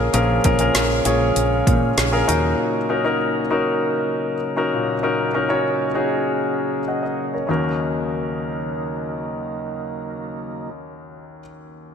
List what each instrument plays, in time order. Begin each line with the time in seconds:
Already playing: tonewheel organ C#3 G#3 A#3 F4, grand piano C#4 F4 G#4 A#4 C#5
0.13 fretless electric bass A#1, grand piano A#2 F3 C#4 F4 G#4 A#4, closed hi-hat
0.44 fretless electric bass A#1, grand piano C#4 F4 G#4 A#4, kick, closed hi-hat
0.59 grand piano C#4 F4 G#4 A#4, closed hi-hat
0.75 fretless electric bass A#1, snare, closed hi-hat
1.05 fretless electric bass A#1, grand piano C#4 F4 G#4 C#5, closed hi-hat
1.36 fretless electric bass A#1, closed hi-hat
1.67 fretless electric bass A#2, kick, closed hi-hat
1.98 fretless electric bass A#1, snare, closed hi-hat
2.12 grand piano C#4 F4 G#4 A#4
2.27 fretless electric bass D#2, grand piano A#2 C#4 D#4 F#4 A#4, tonewheel organ F#3 D#4, closed hi-hat
2.89 grand piano C#4 D#4 F#4 A#4
3.04 grand piano C#4 D#4 F#4 A#4
3.51 grand piano C#4 D#4 F#4 A#4
4.56 grand piano C#4 D#4 F#4 A#4
4.74 grand piano A#2
5.03 grand piano C#4 D#4 F#4 A#4
5.34 grand piano C#4 D#4 F#4 A#4
5.49 grand piano C#4 D#4 F#4 C#5
5.95 grand piano C#4 D#4 F#4 G#4
6.88 grand piano D#5 F#5
7.03 grand piano D#5
7.34 grand piano A#4 C#5
7.47 grand piano D#2 C#4 D#4 F#4, tonewheel organ C#3 F#3 A#3 D#4
7.51 grand piano A#4